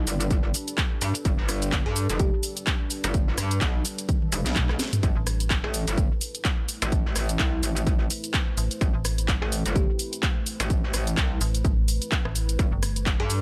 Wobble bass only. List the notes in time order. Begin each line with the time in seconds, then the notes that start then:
0.07 G1
1.02 G2
1.25 G1
1.39 G1
1.86 G2
2.10 F1
3.04 G1
3.38 G2
3.61 B1
4.32 F1
4.46 B1
5.03 A1
5.64 A1
5.88 G1
6.82 A1
7.16 A1
7.39 C2
7.63 A1
8.81 A1
9.42 A1
9.66 G1
10.60 A1
10.94 A1
11.17 C2
12.59 G1
13.20 G2